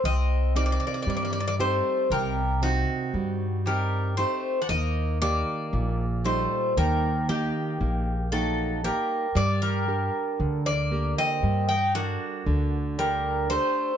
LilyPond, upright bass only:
\new Staff \with { instrumentName = "Upright bass" } { \clef bass \time 9/8 \tempo 4. = 39 c,4 g,4 c,4 g,4. | ees,4 bes,,4 ees,4 bes,,4. | g,4 d,4 g,4 d,4. | }